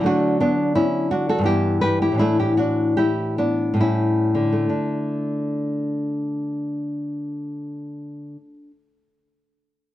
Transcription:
\new Staff \with { instrumentName = "Nylon-string guitar" } { \time 3/4 \key d \major \tempo 4 = 68 << { <d' fis'>8 <b d'>8 <cis' e'>8 <d' fis'>16 <fis' a'>16 <e' g'>8 <g' b'>16 <e' g'>16 | <a e'>16 <e' g'>16 <d' fis'>8 <e' g'>8 <b d'>8 <cis' e'>4 | <d a d'>2.~ | <d a d'>2. | } \\ { <d fis a>2 <g, e b>4 | <a, e d'>2 <a, g>4 | r2. | r2. | } >> }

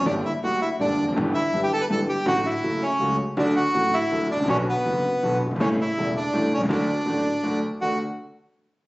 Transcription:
<<
  \new Staff \with { instrumentName = "Bandoneon" } { \time 3/4 \key d \major \tempo 4 = 163 d'8 e'8 fis'8 e'8 d'8. r16 | r8 e'8. g'16 a'16 b'16 a'8 g'8 | fis'8 e'4 cis'4 r8 | d'8 fis'4 e'4 d'8 |
cis'8 b2 r8 | cis'8 e'4 d'4 cis'8 | d'2~ d'8 r8 | fis'8 r2 r8 | }
  \new Staff \with { instrumentName = "Grand piano" } { \clef bass \time 3/4 \key d \major <g,, g, d g bes g'>8 r8 <d, d g bes g'>8 r8 <g,, g, d g bes g'>8 r32 e,32 f,32 fis,32 | <g,, g, e g b g'>8 r8 <g,, g, e g b g'>8 r8 <g,, g, e g b g'>8 r8 | <a,, a, d fis a fis'>8 r8 <fis, cis fis a fis'>8 r8 <cis, cis fis a fis'>8 r8 | <d, d fis a fis'>8 r8 <a,, a, d fis a fis'>8 r8 <d, d fis a fis'>8 r32 gis,,32 a,,32 bes,,32 |
<b,, b, d fis b fis'>8 r8 <fis,, fis, d fis b fis'>8 r8 <b,, b, d fis b fis'>8 r32 fis,,32 g,,32 gis,,32 | <a,, a, cis g a e'>8 r8 <e,, e, cis g a e'>8 r8 <a,, a, cis g a e'>8 r32 b,,32 c,32 cis,32 | <d, d fis a fis'>8 r8 <a,, a, d fis a fis'>8 r8 <d, d fis a fis'>8 r8 | <d, a d' fis'>8 r2 r8 | }
  \new Staff \with { instrumentName = "Upright bass" } { \clef bass \time 3/4 \key d \major g,,16. r8 r32 d,16. r8 r32 g,,16. r16 e,,32 f,,32 fis,,32 | g,,16. r8 r32 g,,16. r8 r32 g,,16. r8 r32 | a,,16. r8 r32 fis,,16. r8 r32 cis,16. r8 r32 | d,16. r8 r32 a,,16. r8 r32 d,16. r16 gis,,32 a,,32 bes,,32 |
b,,16. r8 r32 fis,,16. r8 r32 b,,16. r16 fis,,32 g,,32 gis,,32 | a,,16. r8 r32 e,,16. r8 r32 a,,16. r16 b,,32 c,32 cis,32 | d,16. r8 r32 a,,16. r8 r32 d,16. r8 r32 | d,8 r2 r8 | }
>>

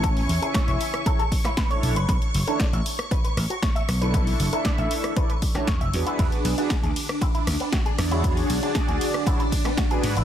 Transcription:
<<
  \new Staff \with { instrumentName = "String machine" } { \time 4/4 \key e \mixolydian \tempo 4 = 117 cis'''1~ | cis'''1~ | cis'''1 | d'1~ |
d'1 | }
  \new Staff \with { instrumentName = "Clean electric guitar" } { \time 4/4 \key e \mixolydian a'16 r8 gis'16 cis''16 cis''16 r8 a'16 a'16 r16 e'16 b'16 cis''16 r16 b'16 | b'16 r8 a'16 d''16 e''16 r8 b'16 b'16 r16 fis'16 cis''16 e''16 r16 b'16 | b'16 r8 a'16 d''16 e''16 r8 b'16 b'16 r16 fis'16 cis''16 e''16 r16 e'16 | e'16 r8 d'16 gis'16 gis'16 r8 e'16 e'16 r16 b16 fis'16 gis'16 r16 e'16 |
e'16 r8 d'16 gis'16 gis'16 r8 e'16 e'16 r16 b16 fis'16 gis'16 r16 e'16 | }
  \new Staff \with { instrumentName = "Analog polysynth" } { \time 4/4 \key e \mixolydian <cis' e' cis'' gis''>8. <cis' e' e'' gis''>4~ <cis' e' e'' gis''>16 <cis' e' gis' cis''>16 r4 <d' e' a' cis''>8 r16 | r8. <d' e' a' cis''>16 r2 r8. <d' e' a'>16~ | <d' e' a'>8. <d' e' a' e''>4~ <d' e' a' e''>16 <d' a' d''>16 r8 <d' e' a' cis''>16 r8 <d' fis' gis' b'>8~ | <d' fis' gis' b'>8. <d' fis' gis' b'>16 r2 r8. <d' fis' gis' cis''>16~ |
<d' fis' gis' cis''>8. <d' fis' gis' d''>4~ <d' fis' gis' d''>16 <d' fis' gis' cis''>16 r4 <d' fis' gis' b'>8 r16 | }
  \new Staff \with { instrumentName = "Slap bass" } { \clef bass \time 4/4 \key e \mixolydian a,,16 r16 e,16 r8 e,,16 r2 b,,16 fis,,16 | b,,16 r16 fis,,16 r8 a,,16 r4 a,,16 r8. b,,8~ | b,,16 r16 fis,,16 r8 a,,16 r4. e,16 fis,,16 e,16 r16 | e,16 r16 b,,16 r8 d,16 r4 d,16 r8. e,8~ |
e,16 r16 b,,16 r8 d,16 r2 gis,16 b,,16 | }
  \new DrumStaff \with { instrumentName = "Drums" } \drummode { \time 4/4 <hh bd>16 hho16 hho16 hh16 <hh bd sn>16 hh16 hho16 <hh ss>16 <hh bd>16 hh16 <hho bd>16 <hh ss sn>16 <hh bd sn>16 hh16 hho16 hh16 | <hh bd>16 hh16 hho16 hh16 <hh bd sn>16 hh16 hho16 <hh ss>16 <hh bd>16 hh16 <hho ss>16 hh16 <hh bd sn>16 hh16 <hho ss>16 hh16 | <hh bd>16 hho16 hho16 hh16 <hh bd sn>16 hh16 hho16 <hh ss>16 <hh bd>16 hh16 <hho bd>16 <hh ss sn>16 <hh bd sn>16 hh16 hho16 hh16 | <hh bd cymr>16 hh16 <hho cymr>16 hh16 <hh bd cymr sn>16 hh16 <hho cymr>16 <hh ss>16 <hh bd cymr>16 hh16 <hho cymr ss>16 hh16 <hh bd sn>16 hh16 <hho cymr ss>16 hh16 |
<hh bd cymr>16 hho16 <hho cymr>16 hh16 <hh bd sn>16 hh16 <hho cymr>16 <hh ss>16 <hh bd cymr>16 hh16 <hho bd cymr>16 <hh ss sn>16 <hh bd cymr sn>16 hh16 <hho cymr>16 hh16 | }
>>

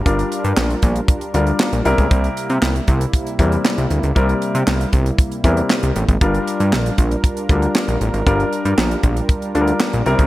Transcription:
<<
  \new Staff \with { instrumentName = "Grand piano" } { \time 4/4 \key g \dorian \tempo 4 = 117 <g d' f' bes'>4. r4 <g d' f' bes'>4 <g c' e' bes'>8~ | <g c' e' bes'>4 r4. <g c' e' bes'>4 r8 | <g c' e' bes'>4. r4 <g c' e' bes'>4 r8 | <g d' f' bes'>4. r4 <g d' f' bes'>4 r8 |
<g d' f' bes'>4. r4 <g d' f' a' bes'>4 <g c' e' bes'>8 | }
  \new Staff \with { instrumentName = "Analog synth pad" } { \time 4/4 \key g \dorian <g d' f' bes'>2.~ <g d' f' bes'>8 <c g bes e'>8~ | <c g bes e'>1~ | <c g bes e'>1 | <g d' f' bes'>1~ |
<g d' f' bes'>2.~ <g d' f' bes'>8 <c bes e'>8 | }
  \new Staff \with { instrumentName = "Analog synth bass" } { \clef bass \time 4/4 \key g \dorian g,,8 r16 g,16 bes,,8 bes,,8 r8 d,8 r16 bes,,16 c,16 cis,16 | c,8 r16 c16 c,8 c,8 r8 e,8 r16 c,16 d,16 cis,16 | c,8 r16 c16 c,8 c,8 r8 e,8 r16 c,16 a,,16 aes,,16 | g,,8 r16 g,16 bes,,8 bes,,8 r8 d,8 r16 bes,,16 a,,16 aes,,16 |
g,,8 r16 g,16 bes,,8 bes,,8 r8 d,8 r16 bes,,16 c,16 cis,16 | }
  \new DrumStaff \with { instrumentName = "Drums" } \drummode { \time 4/4 <hh bd>16 hh16 hh16 hh16 <hc sn>16 hh16 <hh bd>16 hh16 <hh bd>16 hh16 hh16 hh16 <hc sn>16 hh16 hh16 <hh bd>16 | <hh bd>16 hh16 hh16 hh16 <hc sn>16 hh16 <hh bd>16 hh16 <hh bd>16 hh16 <hh bd>16 hh16 <hc sn>16 hh16 hh16 hh16 | <hh bd>16 hh16 hh16 hh16 <hc sn>16 hh16 <hh bd>16 hh16 <hh bd>16 hh16 <hh bd>16 hh16 <hc sn>16 hh16 hh16 <hh bd>16 | <hh bd>16 hh16 hh16 hh16 <hc sn>16 hh16 <hh bd>16 hh16 <hh bd>16 hh16 <hh bd>16 hh16 <hc sn>16 hh16 hh16 hh16 |
<hh bd>16 hh16 hh16 hh16 <hc sn>16 hh16 <hh bd>16 hh16 <hh bd>16 hh16 hh16 hh16 <hc sn>16 hh16 hh16 <hh bd>16 | }
>>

